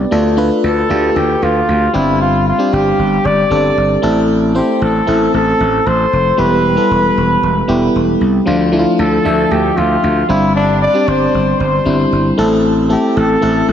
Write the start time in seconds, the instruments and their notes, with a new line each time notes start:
Already playing: fm electric piano B3 D4 G4 B4 D5
0.11 slap bass D2, fm electric piano A3 D4 F4 A4
0.37 fm electric piano A3 D4 F4 B4
0.64 slap bass D2, flugelhorn A4
0.89 slap bass D2, fm electric piano A3 D4 F4 G4
1.16 slap bass D2, flugelhorn G4
1.42 slap bass D2, flugelhorn F4
1.68 slap bass D2
1.93 slap bass G1, fm electric piano G3 C4 D4 G4, flugelhorn E4
2.21 flugelhorn F4
2.48 flugelhorn F4
2.58 fm electric piano G3 C4 D4 G4
2.73 slap bass G1, flugelhorn G4
2.99 slap bass G1
3.25 slap bass G1, flugelhorn D5
3.50 slap bass G1, fm electric piano G3 C4 D4 A4
3.77 slap bass G1
4.02 slap bass A1, fm electric piano A3 C4 E4 A4
4.55 fm electric piano A3 C4 E4 C5, flugelhorn G4
4.81 slap bass A1, flugelhorn A4
5.07 slap bass A1, fm electric piano A3 C4 E4 A4
5.34 slap bass A1, flugelhorn A4
5.60 slap bass A1
5.86 slap bass A1, flugelhorn C5
6.13 slap bass F1
6.37 slap bass E1, fm electric piano G3 B3 E4 G4, flugelhorn B4
6.76 fm electric piano G3 B3 E4 A4
6.91 slap bass E1
7.17 slap bass E1
7.43 slap bass E1
7.68 slap bass E1, fm electric piano G3 B3 E4 G4
7.95 slap bass E1
8.21 slap bass C2
8.46 slap bass D2, fm electric piano F3 A3 D4 F4
8.72 fm electric piano F3 A3 D4 E4
8.79 fm electric piano F4
8.99 slap bass D2, flugelhorn A4
9.24 slap bass D2, fm electric piano F3 A3 D4 E5
9.51 slap bass D2, flugelhorn G4
9.77 slap bass D2, flugelhorn F4
10.04 slap bass D2
10.29 slap bass G1, fm electric piano G3 C4 D4 G4, flugelhorn E4
10.56 flugelhorn D4
10.82 flugelhorn D5
10.94 fm electric piano G3 C4 D4 G4
11.07 slap bass G1, flugelhorn C5
11.34 slap bass G1
11.60 slap bass G1, flugelhorn C5
11.85 slap bass G1, fm electric piano G3 C4 D4 E4
12.12 slap bass G1
12.38 slap bass A1, fm electric piano A3 C4 E4 A4
12.89 fm electric piano A3 C4 E4 A4, flugelhorn G4
13.17 slap bass A1, flugelhorn A4
13.41 slap bass A1, fm electric piano A3 C4 E4 A4
13.68 slap bass A1, flugelhorn A4